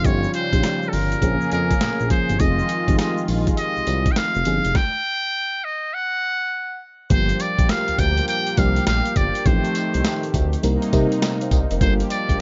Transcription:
Already playing: F4
0.04 G1 C#3 F3 G3 C#4 D#4 G4 C#5, kick, closed hi-hat, shaker
0.24 shaker
0.34 C5, closed hi-hat, shaker
0.53 A#1 F3 C#4 D#4 G4, kick, closed hi-hat, shaker
0.63 snare, closed hi-hat, shaker
0.82 shaker
0.88 A4
0.93 G1 A#4, open hi-hat, shaker
1.12 closed hi-hat, shaker
1.22 A#1 F3 A#3 C#4 G#4, kick, closed hi-hat, shaker
1.41 F2, shaker
1.52 F2 A#4, closed hi-hat, shaker
1.71 kick, closed hi-hat, shaker
1.81 A#1, snare, closed hi-hat, shaker
2.00 A#1, shaker
2.10 F3 A#3 C#4 G#4 C5, kick, closed hi-hat, shaker
2.29 G1, closed hi-hat, shaker
2.40 F1 D#3 F3 G#3 C4 D#4 F4 G#4 D#5, kick, closed hi-hat, tambourine, shaker
2.59 shaker
2.69 closed hi-hat, shaker
2.88 G#1 F3 C4 D#4 G4, kick, closed hi-hat, shaker
2.96 G#4 D#5, snare, closed hi-hat, tambourine, shaker
3.18 shaker
3.28 A#1, open hi-hat, tambourine, shaker
3.47 kick, closed hi-hat, shaker
3.57 D#5, closed hi-hat, tambourine, shaker
3.76 C2, shaker
3.87 C2, closed hi-hat, tambourine, shaker
4.06 kick, closed hi-hat, shaker
4.12 G5
4.16 F5, snare, closed hi-hat, tambourine, shaker
4.35 F1, shaker
4.45 G1 F3 C4 D#4 G#4, closed hi-hat, tambourine, shaker
4.64 F1, closed hi-hat, shaker
4.75 G5, kick, snare
5.64 D#5
5.94 F#5
7.10 G1 F3 G3 A#3 D4 G4 C5, kick, closed hi-hat, shaker
7.29 closed hi-hat, shaker
7.40 D5, closed hi-hat, tambourine, shaker
7.59 A#1, kick, closed hi-hat, shaker
7.69 F5, snare, closed hi-hat, tambourine, shaker
7.88 D2, closed hi-hat, shaker
7.99 D2 G5, kick, closed hi-hat, tambourine, shaker
8.17 closed hi-hat, shaker
8.28 G5, closed hi-hat, tambourine, shaker
8.47 closed hi-hat, shaker
8.57 C2 F3 G3 A#3 D4 G4 F5, kick, closed hi-hat, tambourine
8.76 closed hi-hat, shaker
8.87 A#1 F5, snare, closed hi-hat, tambourine, shaker
9.05 closed hi-hat, shaker
9.16 G1 D5, kick, closed hi-hat, tambourine, shaker
9.35 closed hi-hat, shaker
9.45 A1 D#3 F3 A3 C4 D#4 G4 C5, kick, closed hi-hat, shaker
9.65 closed hi-hat, shaker
9.75 closed hi-hat, tambourine, shaker
9.94 C2, closed hi-hat, shaker
10.04 snare, closed hi-hat, tambourine, shaker
10.23 closed hi-hat, shaker
10.34 D2, kick, closed hi-hat, tambourine, shaker
10.53 closed hi-hat, shaker
10.63 C2 C3 G3 A#3 C4 D#4 A#4, closed hi-hat, tambourine, shaker
10.82 closed hi-hat, shaker
10.92 C3 G3 A#3 C4 D#4 A#4, kick, closed hi-hat, tambourine
11.12 closed hi-hat, shaker
11.22 A#4 D#5, snare, closed hi-hat, tambourine, shaker
11.41 C5 F5, closed hi-hat, shaker
11.51 C2 D5 G5, kick, closed hi-hat, tambourine, shaker
11.71 F1 A#4 D#5, closed hi-hat, shaker
11.81 G1 F3 G3 A#3 D4 F4 G4 A#4 C5, kick, closed hi-hat, shaker
12.00 closed hi-hat, shaker
12.10 D5, closed hi-hat, tambourine, shaker
12.29 A#1, kick, closed hi-hat, shaker

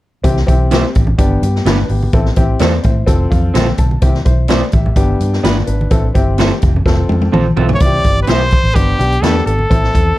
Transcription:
0.23 C2 C4 E4 G4, kick, closed hi-hat, muted conga
0.37 snare
0.47 B1 C4 E4 G4, kick, closed hi-hat, muted conga
0.71 C4 E4 G4 C5, snare, closed hi-hat, high conga
0.95 A1, kick, closed hi-hat
1.07 low conga
1.18 G1 B3 D4 G4, kick, closed hi-hat, muted conga
1.42 G2 B3 G4, closed hi-hat, muted conga
1.56 snare
1.65 G1 B3 D4 G4 B4, snare, closed hi-hat, high conga
1.79 high conga
1.89 G#1 B3 G4, open hi-hat
2.03 high conga
2.13 A1 C4 E4 A4, kick, closed hi-hat, muted conga
2.26 snare
2.36 A1 C4 E4 G4, kick, closed hi-hat
2.59 E2 C4 E4 A4 C5 D5, snare, closed hi-hat, high conga
2.83 A2 E4 C5, kick, closed hi-hat
3.07 F1 C4 F4 A4, kick, closed hi-hat, muted conga
3.30 F2 F5, kick, closed hi-hat, muted conga
3.54 A#1 C4 F4 A4 C5 G5, snare, closed hi-hat, high conga
3.68 high conga
3.78 B1 A5, kick, closed hi-hat
3.91 high conga
4.02 C2 C4 E4 G4, kick, closed hi-hat, muted conga
4.15 snare
4.25 B1 E4 C5, kick, closed hi-hat, muted conga
4.48 C4 E4 G4 C5 D5, snare, closed hi-hat, high conga
4.72 A1 G4 E5, kick, closed hi-hat
4.86 low conga
4.96 G1 B3 D4 G4, kick, closed hi-hat, muted conga
5.20 G2, closed hi-hat, muted conga
5.33 snare
5.43 G1 B3 D4 F4 G4 B4 D5, snare, closed hi-hat, high conga
5.59 high conga
5.67 G#1 D4 B4, closed hi-hat
5.81 high conga
5.91 A1 C4 E4 A4, kick, closed hi-hat, muted conga
6.15 G1 C4 E4 G4, kick, closed hi-hat
6.38 C4 E4 A4 C5, snare, closed hi-hat, high conga
6.62 F1, kick, closed hi-hat
6.76 low conga
6.86 F1 C4 F4 A4, kick, snare, muted conga
7.09 F2, high tom, muted conga
7.22 high tom
7.32 A#1 C4 F4 A4 C5 A5, mid tom, high conga
7.48 high conga
7.56 B1 C4 E4 F4 A4 C5, floor tom
7.69 floor tom, high conga
7.74 C#5
7.80 C2 C4 E4 F4 D5, kick, closed hi-hat, muted conga
7.86 G4
8.04 G1, kick, closed hi-hat
8.22 B4
8.27 B1 C4 E4 G4 C5, snare, closed hi-hat, high conga
8.51 kick, closed hi-hat
8.64 A1, closed hi-hat
8.75 G1 B3 D4 G4, kick, closed hi-hat, muted conga
8.99 B1 B3 D4 G4, closed hi-hat, muted conga
9.12 closed hi-hat
9.22 E2 B3 D4 G4 A4 B4, snare, closed hi-hat, high conga
9.46 G#1 A4, closed hi-hat
9.59 high conga
9.70 A1 C4 E4 A4, kick, closed hi-hat, muted conga
9.84 snare
9.94 E2, kick, closed hi-hat, muted conga

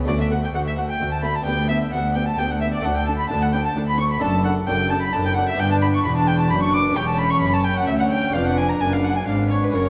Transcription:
0.03 A3 D4 F#4
0.08 D2 F#4 D5
0.20 E5
0.31 A3 F#4 F#5
0.43 G5
0.53 D2 A3 F#4 F#5
0.66 E5
0.77 A3 F#4 F#5
0.88 G5
1.00 D2 A3 F#4
1.11 A5
1.23 A3 F#4 B5
1.35 A5
1.42 B3 D4 G4
1.46 D2 B3 G4 G5
1.69 B3 G4 E5
1.92 D2 B3 G4 F#5
2.15 B3 G4 G5
2.26 A5
2.38 D2 B3 G4 G5
2.49 F#5
2.60 B3 G4 E5
2.72 D5
2.79 A3 D4 A4 F#5
2.84 D2 D4 A4 F#5
2.94 G5
3.06 D4 A4 A5
3.18 B5
3.29 D2 D4 A4 A5
3.41 F#5
3.53 D4 A4 G5
3.64 A5
3.76 D2 D4 A4
3.88 B5
3.98 D4 A4 C#6
4.11 B5
4.18 A3 D4 A4 A5
4.22 F#1 F#2 D4 A4 A5
4.45 D4 A4 F#5
4.67 F#1 F#2 D4 A4 G5
4.90 D4 A4 A5
5.02 B5
5.13 F#1 F#2 D4 A4 A5
5.26 G5
5.36 D4 A4 F#5
5.49 E5
5.55 B3 D4 D5
5.59 G1 G2 D4 B4 G5
5.71 A5
5.82 B5
5.94 C#6
6.05 E1 E2 D4 B4 B5
6.17 A5
6.27 G5
6.39 A5
6.50 F#1 F#2 D4 B4 B5
6.62 C#6
6.73 D6
6.92 C#4 G4 C#5
6.96 E1 E2 C#4 C#5 G5
7.08 A5
7.18 B5
7.31 C#6
7.41 F#1 F#2 B5
7.53 A5
7.64 G5
7.77 F#5
7.87 D2 C#4 C#5 E5
8.00 F#5
8.10 G5
8.30 D4 G#4 B4 F5
8.35 F1 F2 D4 B4 F5
8.46 F#5
8.57 G#5
8.69 A#5
8.80 F#1 F#2 D4 B4 G#5
8.93 F5
9.04 F#5
9.15 G#5
9.26 G#1 G#2 D4 B4 F5
9.51 C#5
9.62 B4
9.70 C#4 F#4 A#4 C#5
9.74 F#1 F#2 C#4 A#4 C#5

